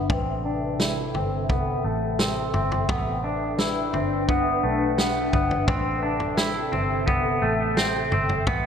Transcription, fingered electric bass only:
0.10 A1
1.14 G1
1.84 A1
2.54 G1
2.89 A1
3.93 G1
4.63 B1
5.33 G1
5.68 A1
6.72 G1
7.42 A1
8.12 G1
8.47 A1

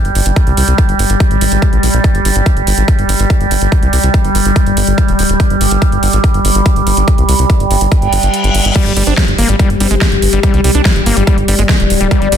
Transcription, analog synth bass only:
0.05 G1
0.15 G1
0.26 G1
0.47 C2
0.57 C2
0.68 C2
0.89 G1
0.99 G1
1.10 G1
1.31 G#1
1.41 G#1
1.52 G#1
1.73 A#1
1.83 A#1
1.94 A#1
2.15 G1
2.25 G1
2.36 G1
2.57 G1
2.67 G1
2.78 G#1
2.99 G1
3.09 G1
3.20 G1
3.41 G1
3.51 G1
3.62 G1
3.83 C2
3.93 C2
4.04 C2
4.25 G1
4.35 G1
4.45 G1
4.66 G1
4.77 G1
4.87 G1
5.08 D1
5.19 D1
5.29 D1
5.50 G1
5.61 G1
5.71 G1
5.92 G1
6.03 G1
6.13 G#1
6.34 G1
6.45 G1
6.55 G1
6.76 G1
6.87 G1
6.97 G1
7.18 C2
7.29 C2
7.39 C2
7.60 G1
7.71 G1
7.81 G1
8.02 G1
8.13 G1
8.23 G1
8.44 G1
8.55 G1
8.65 G1
8.86 G1
8.97 G1
9.07 G1
9.28 G1
9.38 G1
9.49 G#1
9.70 G1
9.80 G1
9.91 G1
10.12 G1
10.22 G1
10.33 G1
10.54 C2
10.64 C2
10.75 C2
10.96 G1
11.06 G1
11.17 G1
11.38 G1
11.48 G1
11.59 G1
11.80 D1
11.90 D1
12.01 D1
12.22 G1
12.32 G1

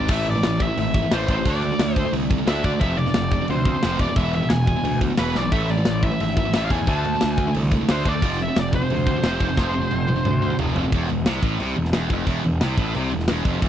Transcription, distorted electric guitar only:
0.09 A2 E3 A3
0.26 A2 E3
0.35 A2 E3
0.43 A2 E3
0.60 A2 E3
0.68 A2 E3
0.78 A2 E3
0.94 A2 E3
1.03 A2 E3
1.12 A2 E3 A3
1.28 A2 E3 A3
1.38 A2 E3
1.46 D3 A3 D4
1.63 D3 A3
1.72 D3 A3
1.80 D3 A3
1.96 D3 A3
2.05 D3 A3
2.13 D3 A3
2.30 D3 A3
2.38 D3 A3
2.47 D3 A3 D4
2.63 D3 A3 D4
2.73 D3 A3
2.80 F2 C3 F3
2.98 F2 C3
3.06 F2 C3
3.16 F2 C3
3.33 F2 C3
3.41 F2 C3
3.49 F2 C3
3.66 F2 C3
3.74 F2 C3
3.83 F2 C3 F3
4.00 E2 B2 E3
4.08 E2 B2
4.17 E2 B2 E3
4.35 E2 B2
4.42 E2 B2
4.50 E2 B2
4.68 E2 B2
4.76 E2 B2
4.84 E2 B2
5.02 E2 B2
5.10 E2 B2
5.18 E2 B2 E3
5.34 E2 B2 E3
5.43 E2 B2
5.52 A2 E3 A3
5.68 A2 E3
5.78 A2 E3
5.86 A2 E3
6.03 A2 E3
6.12 A2 E3
6.21 A2 E3
6.37 A2 E3
6.45 A2 E3
6.54 A2 E3 A3
6.71 A2 E3 A3
6.79 A2 E3
6.88 D3 A3 D4
7.05 D3 A3
7.15 D3 A3
7.22 D3 A3
7.39 D3 A3
7.47 D3 A3
7.56 D3 A3
7.71 D3 A3
7.81 D3 A3
7.89 D3 A3 D4
8.06 D3 A3 D4
8.15 D3 A3
8.22 F2 C3 F3
8.40 F2 C3
8.48 F2 C3
8.55 F2 C3
8.72 F2 C3
8.81 F2 C3
8.90 F2 C3
9.07 F2 C3
9.15 F2 C3
9.23 F2 C3 F3
9.40 F2 C3 F3
9.49 F2 C3
9.57 F2 C3 F3
9.74 F2 C3
9.81 F2 C3
9.91 F2 C3
10.08 F2 C3
10.16 F2 C3
10.25 F2 C3
10.42 F2 C3
10.50 F2 C3
10.59 F2 C3 F3
10.76 F2 C3 F3
10.85 F2 C3
10.94 E2
11.11 E2
11.27 C3
11.43 A2
11.60 C3
11.76 E2
11.93 E2
12.11 F2
12.27 E2
12.45 E2
12.62 C3
12.78 A2
12.96 C3
13.12 E2
13.29 E2
13.45 F2
13.62 E2

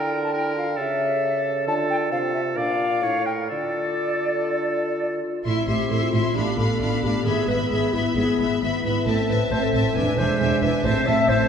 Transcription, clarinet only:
Already playing: E4
0.34 E4
0.56 F4
0.78 G4
1.67 F4
2.12 F4
2.57 D4
3.02 E4
3.50 F4
5.21 F4
5.45 E4
5.67 G4
5.90 A4
6.02 F4
6.36 G4
6.58 A4
7.03 G4
7.25 G#4
7.48 B4
7.71 G#4
7.93 E4
8.16 G#4
8.84 B4
9.06 A4
9.29 B4
9.51 C5
9.63 A4
9.96 B4
10.18 C5
10.62 B4
10.84 C5
11.06 E5
11.28 C5

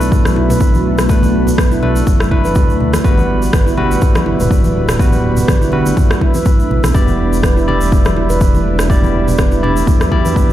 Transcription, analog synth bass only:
Already playing: B1
1.58 B1
2.07 F#1
2.56 D2
3.05 G1
3.53 G1
4.26 G1
4.40 D1
5.48 G1
6.70 A1
6.84 B1
6.95 E1
9.39 E1
9.87 E2
10.36 G1

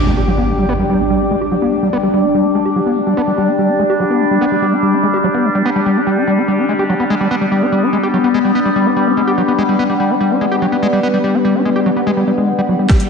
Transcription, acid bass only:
0.07 G#3
0.17 G4
0.27 F#3
0.38 B3
0.48 G3
0.58 G3
0.69 B3
0.79 G3
0.89 G3
1.00 D4
1.10 G3
1.21 D4
1.31 G#3
1.41 G4
1.52 F#3
1.62 B3
1.72 G3
1.83 G3
1.93 B3
2.03 G3
2.14 G3
2.24 D4
2.34 G3
2.45 D4
2.55 G#3
2.65 G4
2.76 F#3
2.86 B3
2.96 G3
3.07 G3
3.17 B3
3.27 G3
3.38 G3
3.48 D4
3.59 G3
3.69 D4
3.79 G#3
3.90 G4
4.00 F#3
4.10 B3
4.21 G3
4.31 G3
4.41 B3
4.52 G3
4.62 G3
4.72 D4
4.83 G3
4.93 D4
5.03 G#3
5.14 G4
5.24 F#3
5.34 B3
5.45 G3
5.55 G3
5.65 B3
5.76 G3
5.86 G3
5.96 D4
6.07 G3
6.17 D4
6.27 G3
6.38 D4
6.48 G3
6.58 D4
6.69 G#3
6.79 G4
6.90 F#3
7.00 B3
7.10 G#3
7.21 G3
7.31 B3
7.41 G3
7.52 G3
7.62 D4
7.72 G3
7.83 D4
7.93 G#3
8.03 G4
8.14 F#3
8.24 B3
8.34 G#3
8.45 G3
8.55 B3
8.65 G3
8.76 G3
8.86 D4
8.96 G3
9.07 D4
9.17 G#3
9.27 G4
9.38 F#3
9.48 B3
9.58 G#3
9.69 G3
9.79 B3
9.89 G3
10.00 G3
10.10 D4
10.21 G3
10.31 D4
10.41 G#3
10.52 G4
10.62 F#3
10.72 B3
10.83 G#3
10.93 G3
11.03 B3
11.14 G3
11.24 G3
11.34 D4
11.45 G3
11.55 D4
11.65 G#3
11.76 G4
11.86 F#3
11.96 B3
12.07 G#3
12.17 G3
12.27 G3
12.38 G#3
12.48 G3
12.58 G3
12.69 F#3
12.79 G3
12.89 G3
13.00 D4

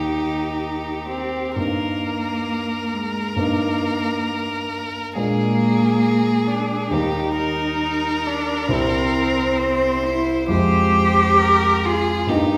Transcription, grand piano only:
Already playing: D#2 A#3 D#4 G4
1.56 G2 A#3 D#4 A#4
3.36 G2 A#3 D#4 A#4
5.16 A#2 G#3 D4 A#4
6.90 D#2 G3 D#4 A#4
8.68 C2 G3 E4 A#4
10.48 F2 G#3 F4 C5
12.27 G2 A#3 D#4 D#5

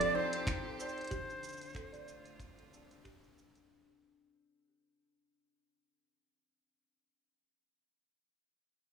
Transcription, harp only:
Already playing: F3 A#3 C4 D4 G4
0.14 C4 D#4 A4
0.47 D#4
0.79 A4
1.11 D3
1.75 C4
2.72 C4 D4 A4
3.05 D4
3.37 A4

